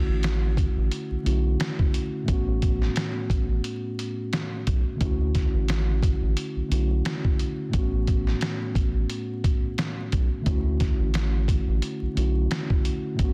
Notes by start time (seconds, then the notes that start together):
Already playing: D3 A3 C#4 E4 F#4
0.09 A1
0.23 snare, closed hi-hat
0.57 kick, closed hi-hat
0.77 A1
0.91 closed hi-hat
1.11 B1
1.23 B1 D3 A3 C#4 E4, closed hi-hat
1.28 F#4
1.60 snare, closed hi-hat
1.79 kick
1.94 closed hi-hat
2.23 A2 A3
2.28 A1 B3 C#4, kick, closed hi-hat
2.33 F#4
2.62 kick, closed hi-hat
2.82 snare
2.96 snare, closed hi-hat
3.30 A1, kick, closed hi-hat
3.64 closed hi-hat
3.99 closed hi-hat
4.33 snare, closed hi-hat
4.67 B1, kick, closed hi-hat
4.96 D3 A3
5.01 D2 C#4 E4, kick, closed hi-hat
5.05 F#4
5.35 kick, snare, closed hi-hat
5.54 A1
5.68 snare, closed hi-hat
6.03 kick, closed hi-hat
6.22 A1
6.37 closed hi-hat
6.56 B1
6.68 B1 D3 A3 C#4 E4, closed hi-hat
6.73 F#4
7.05 snare, closed hi-hat
7.25 kick
7.39 closed hi-hat
7.69 A2 A3
7.73 A1 B3 C#4, kick, closed hi-hat
7.78 F#4
8.07 kick, closed hi-hat
8.27 snare
8.41 snare, closed hi-hat
8.75 A1, kick, closed hi-hat
9.10 closed hi-hat
9.44 kick, closed hi-hat
9.78 snare, closed hi-hat
10.12 B1, kick, closed hi-hat
10.41 D3 A3
10.46 D2 C#4 E4, kick, closed hi-hat
10.51 F#4
10.80 kick, snare, closed hi-hat
11.00 A1
11.14 snare, closed hi-hat
11.48 kick, closed hi-hat
11.68 A1
11.82 closed hi-hat
12.02 B1
12.14 B1 D3 A3 C#4 E4, closed hi-hat
12.19 F#4
12.51 snare, closed hi-hat
12.70 kick
12.85 closed hi-hat
13.14 A2 A3
13.19 A1 B3 C#4, kick, closed hi-hat
13.24 F#4